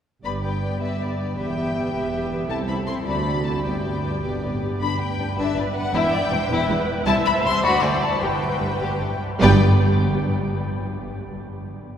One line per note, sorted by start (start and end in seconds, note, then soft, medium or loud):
0.23 0.73 G1 soft
0.23 0.74 G2 soft
0.23 0.42 B3 soft
0.23 0.41 G4 soft
0.23 0.41 B4 soft
0.23 0.42 D5 soft
0.23 0.31 B5 medium
0.42 0.60 B3 soft
0.42 0.60 G4 soft
0.42 0.61 B4 soft
0.42 0.61 D5 soft
0.42 0.79 G5 medium
0.61 0.79 B3 soft
0.61 0.79 G4 soft
0.61 0.80 B4 soft
0.61 0.80 D5 soft
0.80 1.31 G1 soft
0.80 1.31 G2 soft
0.80 0.98 B3 soft
0.80 0.98 G4 soft
0.80 1.00 B4 soft
0.80 1.00 D5 soft
0.80 0.99 E5 medium
0.99 1.17 B3 soft
0.99 1.17 G4 soft
0.99 1.18 B4 soft
0.99 1.38 D5 soft
0.99 1.18 D5 soft
1.18 1.37 B3 soft
1.18 1.36 G4 soft
1.18 1.36 B4 soft
1.18 1.38 D5 soft
1.37 1.87 E1 soft
1.37 1.87 E2 soft
1.37 1.55 B3 soft
1.37 1.55 G4 soft
1.37 1.55 B4 soft
1.37 1.55 E5 soft
1.37 2.29 G5 medium
1.56 1.73 B3 soft
1.56 1.73 G4 soft
1.56 1.74 B4 soft
1.56 1.74 E5 soft
1.74 1.92 B3 soft
1.74 1.93 G4 soft
1.74 1.92 B4 soft
1.74 1.92 E5 soft
1.93 2.42 E1 soft
1.93 2.43 E2 medium
1.93 2.12 B3 soft
1.93 2.11 G4 soft
1.93 2.10 B4 soft
1.93 2.11 E5 soft
2.12 2.30 B3 soft
2.12 2.30 G4 soft
2.12 2.29 B4 soft
2.12 2.29 E5 soft
2.30 2.50 B3 soft
2.30 2.49 G4 soft
2.30 2.49 B4 soft
2.30 2.47 E5 soft
2.48 2.99 C2 medium
2.48 2.67 C4 medium
2.48 2.68 E4 soft
2.48 2.67 A4 soft
2.48 2.67 E5 soft
2.48 2.57 A5 medium
2.68 2.86 C4 soft
2.68 2.86 E4 soft
2.68 2.85 A4 soft
2.68 2.85 E5 soft
2.68 2.76 B5 medium
2.86 3.05 C4 soft
2.86 3.06 E4 soft
2.86 3.05 A4 soft
2.86 3.05 E5 soft
2.86 2.94 C6 medium
3.05 3.57 D2 soft
3.05 3.57 D2 medium
3.05 3.23 C4 soft
3.05 3.23 F#4 soft
3.05 3.22 A4 medium
3.05 3.23 D5 medium
3.05 3.44 B5 medium
3.24 3.43 C4 soft
3.24 3.43 F#4 soft
3.24 3.42 A4 soft
3.24 3.42 D5 soft
3.43 3.64 C4 soft
3.43 3.64 F#4 soft
3.43 3.63 A4 soft
3.43 3.62 D5 soft
3.43 3.65 A5 medium
3.63 4.16 G1 soft
3.63 4.15 G2 soft
3.63 3.82 B3 soft
3.63 3.82 G4 soft
3.63 3.80 B4 soft
3.63 3.81 D5 soft
3.63 4.60 G5 medium
3.82 4.01 B3 soft
3.82 4.02 G4 soft
3.82 4.00 B4 soft
3.82 4.00 D5 soft
4.01 4.21 B3 soft
4.01 4.21 G4 soft
4.01 4.20 B4 soft
4.01 4.20 D5 soft
4.21 4.74 G1 soft
4.21 4.40 B2 soft
4.21 4.41 B3 soft
4.21 4.41 G4 soft
4.21 4.41 B4 soft
4.21 4.41 D5 soft
4.41 4.61 A2 soft
4.41 4.61 B3 soft
4.41 4.61 G4 soft
4.41 4.60 B4 soft
4.41 4.60 D5 soft
4.60 4.78 G2 soft
4.60 4.81 B3 soft
4.60 4.81 G4 soft
4.60 4.79 B4 soft
4.60 4.81 D5 soft
4.79 4.88 G1 medium
4.79 4.87 G2 medium
4.79 4.98 D4 medium
4.79 7.02 B4 medium
4.79 4.99 B5 medium
5.01 5.38 G5 medium
5.18 5.27 G1 soft
5.18 5.26 G2 soft
5.18 5.26 D4 soft
5.37 5.45 G1 medium
5.37 5.45 G2 medium
5.37 5.55 D4 medium
5.37 5.91 B4 medium
5.37 5.57 E5 medium
5.56 5.64 G1 medium
5.56 5.63 G2 medium
5.56 5.64 D4 medium
5.56 5.76 D5 medium
5.75 5.94 F#5 medium
5.93 6.02 E1 medium
5.93 6.01 E2 medium
5.93 6.12 E4 medium
5.93 6.13 E5 medium
5.93 6.87 G5 loud
6.12 6.31 D5 medium
6.31 6.39 E1 medium
6.31 6.39 E2 medium
6.31 6.39 E4 medium
6.31 6.50 C5 medium
6.49 6.58 E1 medium
6.49 6.58 E2 loud
6.49 6.68 E4 loud
6.49 7.06 B4 medium
6.69 6.76 E1 medium
6.69 6.76 E2 medium
6.69 6.77 E4 medium
7.06 7.14 C2 medium
7.06 7.24 E4 medium
7.06 8.20 C5 medium
7.06 7.62 E5 loud
7.06 7.14 A5 loud
7.25 7.33 B5 loud
7.44 7.52 C2 medium
7.44 7.52 E4 medium
7.44 7.64 C6 loud
7.62 7.71 D2 medium
7.62 7.72 D2 medium
7.62 7.81 F#4 loud
7.62 8.22 D5 medium
7.62 7.83 B5 loud
7.82 7.90 D2 medium
7.82 7.91 D2 medium
7.82 7.91 F#4 medium
7.82 8.03 G5 medium
8.03 8.22 A5 medium
8.21 8.30 G1 medium
8.21 8.29 G2 medium
8.21 8.40 G4 medium
8.21 9.21 B4 medium
8.21 9.10 B4 medium
8.21 9.21 G5 medium
8.61 8.69 G1 soft
8.61 8.69 G2 soft
8.61 8.69 G4 soft
8.81 8.89 G1 medium
8.81 8.89 G2 medium
8.81 8.99 G4 medium
9.00 9.09 G1 soft
9.00 9.08 G2 medium
9.00 9.08 G4 medium
9.40 9.63 G1 loud
9.40 9.63 G2 loud
9.40 9.63 B3 medium
9.40 9.63 G4 medium
9.40 9.63 B4 medium
9.40 9.63 D5 medium
9.40 9.64 G5 loud